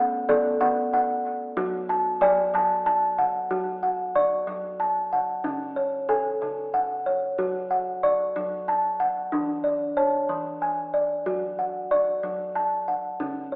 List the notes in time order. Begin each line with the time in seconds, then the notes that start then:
Already playing: B3 C#4 F#5
0.29 B3 A4 D5
0.61 B3 F#5
0.94 F#5
1.57 F#3 F#4
1.90 A5
2.21 F#3 D5 G#5
2.54 F#3 A5
2.86 A5
3.18 F#5
3.51 F#3 F#4
3.83 F#5
4.15 D5 C#6
4.47 F#3
4.80 A5
5.12 F#5
5.44 C#3 C#4
5.76 C#5
6.09 A4 G#5
6.42 C#3
6.74 F#5
7.06 C#5
7.38 F#3 F#4
7.71 F#5
8.03 D5 C#6
8.36 F#3
8.68 A5
9.00 F#5
9.32 E3 D4
9.64 D5
9.97 C#5 A5
10.29 E3
10.62 G#5
10.94 D5
11.26 F#3 F#4
11.59 F#5
11.91 D5 C#6
12.23 F#3
12.55 A5
12.88 F#5
13.20 C#3 C#4
13.52 C#5